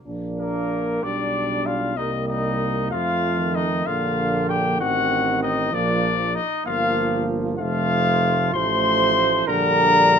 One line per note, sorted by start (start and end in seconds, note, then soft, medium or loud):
0.07 0.99 A#1 medium
0.07 1.05 A#3 medium
0.07 0.99 D4 medium
0.40 1.04 A#3 medium
0.40 1.05 A#4 medium
1.03 1.99 B1 medium
1.03 1.96 G3 medium
1.03 1.98 D4 medium
1.03 1.68 D4 medium
1.03 1.67 D5 loud
1.66 1.96 F4 medium
1.66 1.99 F5 medium
1.97 2.93 C2 medium
1.97 2.93 G3 medium
1.97 2.93 A#3 medium
1.97 2.11 D#4 medium
1.97 2.28 D#5 loud
2.28 2.90 D#4 medium
2.28 2.90 D#5 medium
2.91 3.86 F2 medium
2.91 3.41 F3 medium
2.91 3.87 A3 medium
2.91 3.57 F4 medium
2.91 3.57 F5 loud
3.39 3.88 D#3 medium
3.55 3.88 D#4 medium
3.55 3.88 D#5 loud
3.86 4.82 A#1 medium
3.86 4.82 D3 medium
3.86 4.82 A#3 medium
3.86 4.51 F4 medium
3.86 4.49 F5 loud
4.49 4.80 G4 medium
4.49 4.80 G5 loud
4.80 5.73 A1 medium
4.80 5.74 D#3 medium
4.80 5.73 C4 medium
4.80 5.41 F#4 medium
4.80 5.41 F#5 loud
5.43 5.73 D#4 medium
5.43 5.76 D#5 loud
5.73 6.38 A#1 medium
5.73 6.39 F3 medium
5.73 6.38 A#3 medium
5.73 6.34 D4 loud
5.73 6.37 D5 loud
6.34 6.68 D#4 medium
6.34 6.65 D#5 loud
6.66 7.61 G1 medium
6.66 7.54 F3 medium
6.66 7.54 A#3 medium
6.66 7.28 F4 loud
6.66 7.26 F5 loud
7.58 8.56 F1 medium
7.58 8.53 F3 medium
7.58 8.53 A3 medium
7.58 8.50 F4 loud
7.58 8.51 F5 loud
8.54 9.46 A1 loud
8.54 9.48 F3 medium
8.54 9.45 A3 medium
8.54 9.49 C5 loud
8.54 9.45 C6 loud
9.47 10.19 A#1 loud
9.47 10.19 D3 medium
9.47 10.19 G3 medium
9.47 10.19 A#4 loud
9.47 10.19 A#5 loud